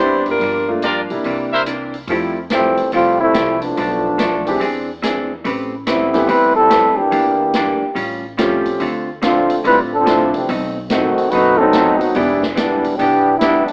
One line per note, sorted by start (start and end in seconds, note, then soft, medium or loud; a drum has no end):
0.00 0.22 G1 medium
0.00 0.28 C3 medium
0.00 0.28 E3 medium
0.00 0.24 G3 medium
0.00 0.40 G3 medium
0.00 0.40 B3 soft
0.00 0.28 B3 medium
0.00 0.24 D4 medium
0.00 0.41 D4 soft
0.00 0.28 D4 medium
0.00 0.24 E4 medium
0.00 0.41 E4 medium
0.00 0.24 C5 medium
0.26 0.39 G#1 medium
0.26 0.69 G3 medium
0.26 0.69 D4 medium
0.26 0.70 F4 medium
0.26 0.69 A#4 medium
0.26 open hi-hat soft
0.40 1.05 G1 medium
0.40 0.69 G2 soft
0.40 0.70 F3 soft
0.40 0.70 A#3 soft
0.40 0.71 D4 soft
0.40 open hi-hat soft
0.68 0.81 A3 medium
0.68 0.81 A#3 medium
0.68 0.81 D4 medium
0.68 0.81 F4 medium
0.82 1.11 G2 medium
0.82 1.12 F3 medium
0.82 1.12 A#3 medium
0.82 1.12 D4 medium
0.82 1.01 F4 medium
0.82 1.01 G4 medium
0.82 1.01 A#4 medium
0.82 1.01 D5 medium
0.82 closed hi-hat soft
1.10 1.23 B1 medium
1.10 1.64 G3 medium
1.10 1.64 A#3 soft
1.10 1.64 D4 medium
1.10 1.64 E4 medium
1.10 open hi-hat soft
1.23 2.04 C2 medium
1.23 1.53 C3 medium
1.23 1.54 E3 medium
1.23 1.54 A#3 medium
1.23 1.54 D4 medium
1.23 open hi-hat soft
1.52 1.62 E4 medium
1.52 1.62 A#4 medium
1.52 1.62 C5 medium
1.52 1.62 E5 medium
1.66 1.95 C3 medium
1.66 1.95 E3 medium
1.66 1.96 A#3 medium
1.66 1.96 D4 medium
1.66 closed hi-hat medium
1.94 open hi-hat soft
2.07 2.88 F2 medium
2.07 2.38 F3 medium
2.07 2.34 F3 medium
2.07 2.34 G3 medium
2.07 2.38 A3 medium
2.07 2.34 A3 soft
2.07 2.38 E4 medium
2.07 open hi-hat soft
2.11 2.35 C4 medium
2.11 2.34 E4 medium
2.11 2.39 G4 medium
2.50 2.90 E3 medium
2.50 2.80 F3 medium
2.50 2.90 G3 medium
2.50 2.80 A3 medium
2.50 2.91 A3 medium
2.50 2.91 C4 medium
2.50 2.80 E4 medium
2.50 2.81 G4 medium
2.50 snare medium
2.50 closed hi-hat medium
2.77 open hi-hat soft
2.92 3.31 C2 medium
2.92 3.22 F3 soft
2.92 3.19 G3 medium
2.92 3.22 A3 medium
2.92 3.19 A3 medium
2.92 3.19 C4 medium
2.92 3.22 E4 medium
2.92 3.19 F4 loud
2.92 3.22 G4 medium
2.92 open hi-hat soft
3.21 3.59 G3 medium
3.21 3.59 A3 medium
3.21 3.59 C4 medium
3.21 3.59 E4 loud
3.34 3.74 C2 medium
3.34 3.63 F3 medium
3.34 3.63 A3 medium
3.34 3.64 E4 medium
3.34 3.64 G4 medium
3.34 snare medium
3.34 closed hi-hat medium
3.62 4.61 F3 medium
3.62 4.61 A3 medium
3.62 4.61 B3 medium
3.62 4.88 D4 medium
3.62 open hi-hat soft
3.77 4.57 B1 medium
3.77 4.06 B2 soft
3.77 4.06 F3 soft
3.77 4.06 A3 medium
3.77 4.06 D4 medium
3.77 open hi-hat soft
4.18 4.47 B2 medium
4.18 4.47 F3 medium
4.18 4.48 A3 medium
4.18 4.48 D4 medium
4.18 snare medium
4.18 closed hi-hat medium
4.47 4.60 E3 medium
4.47 4.59 G#3 medium
4.47 4.59 C4 medium
4.47 4.60 D4 medium
4.47 4.60 G4 medium
4.47 open hi-hat soft
4.60 5.40 E2 medium
4.60 4.89 E3 medium
4.60 4.89 C4 medium
4.60 4.90 D4 medium
4.60 4.90 G#4 medium
4.60 open hi-hat soft
5.02 5.31 E3 medium
5.02 5.31 C4 medium
5.02 5.32 D4 medium
5.02 5.32 G#4 medium
5.02 snare medium
5.02 closed hi-hat medium
5.44 6.24 A1 medium
5.44 5.73 A3 medium
5.44 5.74 C4 medium
5.44 5.74 G4 medium
5.44 5.74 B4 medium
5.44 open hi-hat soft
5.87 6.27 G3 medium
5.87 6.15 A3 medium
5.87 6.26 B3 medium
5.87 6.15 C4 medium
5.87 6.27 C4 medium
5.87 6.26 E4 medium
5.87 6.16 G4 medium
5.87 6.16 B4 medium
5.87 snare medium
5.87 closed hi-hat medium
6.13 6.27 E3 medium
6.13 6.27 A3 medium
6.13 6.27 B3 medium
6.13 6.27 C4 medium
6.13 6.27 G4 medium
6.13 snare soft
6.13 open hi-hat soft
6.27 6.93 E2 medium
6.27 6.55 G3 medium
6.27 6.57 A3 medium
6.27 6.55 C4 loud
6.27 6.58 C4 medium
6.27 6.56 E4 medium
6.27 6.58 G4 medium
6.27 6.56 B4 loud
6.27 6.58 B4 medium
6.27 open hi-hat soft
6.56 6.95 G3 medium
6.56 6.95 C4 medium
6.56 6.95 E4 medium
6.56 6.95 A4 loud
6.70 6.99 A3 medium
6.70 7.00 C4 medium
6.70 6.99 G4 medium
6.70 7.00 B4 medium
6.70 snare medium
6.70 closed hi-hat medium
6.97 7.96 E3 medium
6.97 7.96 A#3 medium
6.97 7.96 D4 medium
6.97 8.23 G4 medium
6.97 muted upright bass stroke soft
7.11 7.77 E2 loud
7.11 7.40 E3 medium
7.11 7.41 A#3 medium
7.11 7.41 D4 medium
7.11 7.41 G4 medium
7.11 open hi-hat soft
7.53 7.83 E3 medium
7.53 7.83 A#3 medium
7.53 7.84 D4 medium
7.53 7.84 G4 medium
7.53 snare medium
7.53 closed hi-hat medium
7.81 muted upright bass stroke soft
7.95 8.75 A1 medium
7.95 8.24 A2 medium
7.95 8.24 G3 medium
7.95 8.25 C#4 medium
7.95 8.25 F4 medium
7.95 open hi-hat soft
8.37 8.66 A2 medium
8.37 8.80 F3 medium
8.37 8.67 G3 medium
8.37 8.80 A3 medium
8.37 8.81 C4 medium
8.37 8.67 C#4 medium
8.37 8.81 C#4 medium
8.37 8.67 F4 medium
8.37 8.81 G4 medium
8.37 snare medium
8.37 closed hi-hat medium
8.66 open hi-hat soft
8.80 9.60 D2 loud
8.80 9.09 D3 medium
8.80 9.09 A3 medium
8.80 9.10 C4 medium
8.80 9.10 F4 medium
8.80 open hi-hat soft
9.22 9.50 D3 medium
9.22 9.51 A3 medium
9.22 9.61 A3 medium
9.22 9.61 C4 medium
9.22 9.51 C4 medium
9.22 9.61 D4 medium
9.22 9.61 F4 medium
9.22 9.51 F4 medium
9.22 snare medium
9.22 closed hi-hat medium
9.50 open hi-hat soft
9.64 10.29 A2 medium
9.64 9.93 D3 medium
9.64 9.78 G3 medium
9.64 9.93 A3 soft
9.64 9.93 C4 medium
9.64 9.78 C4 medium
9.64 9.78 E4 medium
9.64 9.94 F4 medium
9.64 9.79 B4 loud
9.64 open hi-hat soft
9.94 10.32 F3 medium
9.94 10.32 C4 medium
9.94 10.32 D4 medium
9.94 10.32 A4 loud
10.06 10.35 D3 medium
10.06 10.48 F3 medium
10.06 10.35 A3 medium
10.06 10.48 A3 soft
10.06 10.35 C4 medium
10.06 10.49 C4 medium
10.06 10.49 D4 medium
10.06 10.49 E4 medium
10.06 10.35 F4 medium
10.06 snare medium
10.06 closed hi-hat medium
10.34 10.47 C2 medium
10.34 10.49 E3 medium
10.34 10.49 A3 medium
10.34 10.49 C4 medium
10.34 10.49 G4 medium
10.34 open hi-hat soft
10.49 11.13 B1 loud
10.49 10.77 B2 medium
10.49 10.77 A3 medium
10.49 10.78 C4 medium
10.49 10.78 D#4 medium
10.49 open hi-hat soft
10.89 11.19 B2 medium
10.89 11.28 D#3 medium
10.89 11.28 A3 medium
10.89 11.19 A3 medium
10.89 11.29 C4 medium
10.89 11.20 C4 medium
10.89 11.20 D#4 medium
10.89 11.28 F#4 medium
10.89 snare medium
10.89 closed hi-hat medium
11.18 muted upright bass stroke soft
11.18 open hi-hat soft
11.30 12.12 F#1 medium
11.30 11.61 B2 medium
11.30 11.58 A3 medium
11.30 11.61 A3 medium
11.30 11.57 D#4 loud
11.30 11.58 F#4 loud
11.30 11.58 B4 loud
11.30 open hi-hat soft
11.35 11.62 C4 medium
11.35 11.62 D#4 medium
11.57 12.00 F#3 medium
11.57 12.13 F#3 medium
11.57 12.13 A3 medium
11.57 12.13 B3 medium
11.57 11.99 C4 medium
11.57 12.14 C4 medium
11.57 12.01 D#4 medium
11.57 12.00 A4 loud
11.62 12.14 D#4 medium
11.73 12.03 B2 medium
11.73 12.03 A3 medium
11.73 12.03 C4 medium
11.73 snare medium
11.73 closed hi-hat medium
11.77 12.04 D#4 medium
12.00 12.15 D#3 medium
12.00 12.15 A3 medium
12.00 12.15 C4 medium
12.00 12.15 F#4 medium
12.00 open hi-hat soft
12.15 12.96 E1 loud
12.15 12.44 E3 medium
12.15 12.40 E3 medium
12.15 12.40 G3 medium
12.15 12.44 B3 medium
12.15 12.40 B3 medium
12.15 12.40 D4 medium
12.15 12.45 D4 medium
12.15 12.41 E4 medium
12.15 12.45 G4 medium
12.15 open hi-hat soft
12.43 snare medium
12.55 12.95 E3 medium
12.55 12.85 E3 medium
12.55 12.95 G3 medium
12.55 12.95 B3 medium
12.55 12.86 B3 medium
12.55 12.95 D4 medium
12.55 12.86 D4 medium
12.55 12.86 G4 medium
12.55 snare medium
12.55 closed hi-hat medium
12.84 open hi-hat soft
12.96 13.38 B1 medium
12.96 13.39 E3 loud
12.96 13.28 E3 medium
12.96 13.37 B3 medium
12.96 13.28 B3 medium
12.96 13.38 D4 medium
12.96 13.40 G4 loud
12.96 open hi-hat soft
13.01 13.29 D4 medium
13.01 13.29 G4 medium
13.38 13.72 D2 medium
13.38 13.70 E3 medium
13.38 13.65 G3 medium
13.38 13.65 B3 medium
13.38 13.71 B3 medium
13.38 13.66 D4 medium
13.38 13.65 E4 loud
13.38 snare medium
13.38 closed hi-hat medium
13.43 13.71 D4 medium
13.43 13.71 G4 medium
13.66 13.72 F3 medium
13.66 13.72 A3 medium
13.66 13.72 B3 medium
13.66 13.72 D4 medium
13.66 open hi-hat soft